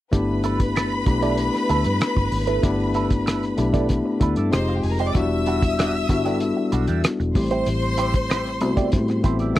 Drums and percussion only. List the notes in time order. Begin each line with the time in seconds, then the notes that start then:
0.13 kick, closed hi-hat
0.44 closed hi-hat
0.60 kick, closed hi-hat
0.76 cross-stick, closed hi-hat
1.06 kick, closed hi-hat
1.22 closed hi-hat
1.37 closed hi-hat
1.54 cross-stick, closed hi-hat
1.69 closed hi-hat
1.84 closed hi-hat
2.01 cross-stick, closed hi-hat
2.17 kick
2.32 open hi-hat
2.47 closed hi-hat
2.63 kick, closed hi-hat
2.94 closed hi-hat
3.10 kick, closed hi-hat
3.27 cross-stick, closed hi-hat
3.43 cross-stick, closed hi-hat
3.58 closed hi-hat
3.74 kick, closed hi-hat
3.89 kick, closed hi-hat
4.21 kick, closed hi-hat
4.36 closed hi-hat
4.53 cross-stick, closed hi-hat
4.69 closed hi-hat
4.83 open hi-hat
4.99 closed hi-hat
5.15 kick, closed hi-hat
5.46 closed hi-hat
5.62 kick, closed hi-hat
5.79 cross-stick, closed hi-hat
6.09 kick, closed hi-hat
6.25 closed hi-hat
6.40 closed hi-hat
6.72 closed hi-hat
6.87 closed hi-hat
7.04 cross-stick, closed hi-hat
7.20 closed hi-hat
7.35 kick, open hi-hat
7.51 closed hi-hat
7.66 closed hi-hat
7.82 closed hi-hat
7.97 closed hi-hat
8.14 kick, closed hi-hat
8.30 cross-stick, closed hi-hat
8.46 cross-stick, closed hi-hat
8.61 closed hi-hat
8.77 kick, closed hi-hat
8.92 kick, closed hi-hat
9.08 cross-stick, closed hi-hat
9.24 kick, closed hi-hat
9.39 closed hi-hat
9.56 closed hi-hat